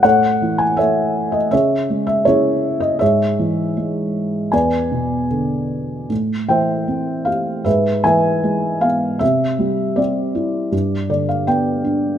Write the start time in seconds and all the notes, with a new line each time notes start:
0.03 A2 A4 C#5 F#5
0.42 E3
0.58 G#5
0.77 A3 A4 C#5 E5
1.32 D#5
1.51 C#3 G#4 C#5 E5
1.90 G#3
2.07 E5
2.25 C#3 E4 G#4 C#5
2.80 D#5
2.99 G#2 G#4 C#5 E5
3.39 E3
3.77 G#3
4.52 E2 B4 D5 G#5
4.92 B2
5.31 D3
6.10 A2
6.48 E3 C5 E5 G5
6.88 C4
7.25 G4 F5
7.64 G#2 G#4 B4 E5
8.04 E3 B4 E5 G#5
8.43 G#3
8.81 B3 F5
9.19 C3 G4 E5
9.59 G3
9.96 C4 G4 D5
10.35 E4
10.72 G2
11.10 D3 D5
11.29 F5
11.47 B3 G5
11.84 D4